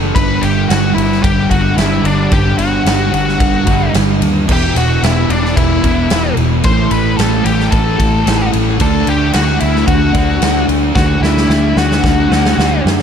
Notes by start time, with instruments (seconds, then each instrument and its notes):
Already playing: fingered electric bass F#1, distorted electric guitar A2 E3 A3
0.15 fingered electric bass G1, distorted electric guitar G2 D3 G3, lead electric guitar B4, kick, ride
0.41 fingered electric bass G1, lead electric guitar G4, ride
0.69 fingered electric bass G1, lead electric guitar F#4, snare, ride
0.95 fingered electric bass G1, lead electric guitar E4, ride
1.12 snare
1.23 fingered electric bass G1, lead electric guitar G4, kick, ride
1.49 fingered electric bass G1, distorted electric guitar G2 D3 G3, lead electric guitar F#4, kick, ride
1.76 fingered electric bass G1, distorted electric guitar G2 D3 G3, lead electric guitar E4, snare, ride
2.04 fingered electric bass G1, lead electric guitar D4, ride
2.31 fingered electric bass G1, distorted electric guitar G2 D3, lead electric guitar G4, kick, ride
2.36 distorted electric guitar G3
2.58 fingered electric bass G1, lead electric guitar F#4, ride
2.86 fingered electric bass G1, snare, ride
3.13 fingered electric bass G1, lead electric guitar F#4, ride
3.28 snare
3.40 fingered electric bass G1, kick, ride
3.66 fingered electric bass G1, distorted electric guitar G2 D3 G3, kick, ride
3.94 fingered electric bass G1, distorted electric guitar G2 D3, snare, ride
3.98 distorted electric guitar G3
4.21 fingered electric bass D#2, ride
4.47 fingered electric bass E1, distorted electric guitar E2 B2 E3, kick, crash
4.52 lead electric guitar G4
4.76 fingered electric bass E1, lead electric guitar F#4, ride
5.03 fingered electric bass E1, lead electric guitar E4, snare, ride
5.29 fingered electric bass E1, lead electric guitar D4, ride
5.45 snare
5.56 fingered electric bass E1, lead electric guitar E4, kick, ride
5.83 fingered electric bass E1, distorted electric guitar B2 E3, kick, ride
5.87 distorted electric guitar E2
6.09 fingered electric bass E1, distorted electric guitar E2 B2 E3, snare, ride
6.37 fingered electric bass E1, ride
6.63 fingered electric bass A1, distorted electric guitar A2 E3, lead electric guitar C5, kick, ride
6.67 distorted electric guitar A3
6.91 fingered electric bass A1, lead electric guitar B4, ride
7.17 fingered electric bass A1, lead electric guitar A4, snare, ride
7.44 fingered electric bass A1, lead electric guitar G4, ride
7.60 snare
7.70 fingered electric bass A1, lead electric guitar A4, kick, ride
7.99 fingered electric bass A1, distorted electric guitar E3 A3, kick, ride
8.03 distorted electric guitar A2
8.25 fingered electric bass A1, distorted electric guitar A2 E3 A3, snare, ride
8.53 fingered electric bass A1, ride
8.78 fingered electric bass D2, distorted electric guitar D3 A3 D4, lead electric guitar A4, kick, ride
9.07 fingered electric bass D2, lead electric guitar G4, ride
9.33 fingered electric bass D2, lead electric guitar F#4, snare, ride
9.60 fingered electric bass D2, lead electric guitar E4, ride
9.76 snare
9.87 fingered electric bass D2, lead electric guitar F#4, kick, ride
10.13 fingered electric bass D2, distorted electric guitar A3 D4, kick, ride
10.17 distorted electric guitar D3
10.39 fingered electric bass D2, distorted electric guitar D3 A3 D4, snare, ride
10.68 fingered electric bass D2, ride
10.94 fingered electric bass D2, distorted electric guitar D3 A3, lead electric guitar F#4, kick, snare
10.99 distorted electric guitar D4
11.21 fingered electric bass D2, lead electric guitar E4, snare
11.37 snare
11.48 fingered electric bass D2, snare
11.76 fingered electric bass D2, lead electric guitar F#4, snare
11.92 snare
12.04 fingered electric bass D2, kick, snare
12.29 fingered electric bass D2, distorted electric guitar D3 A3 D4, snare
12.46 snare
12.56 fingered electric bass D2, distorted electric guitar D3 A3, snare
12.60 distorted electric guitar D4
12.85 fingered electric bass F#2, snare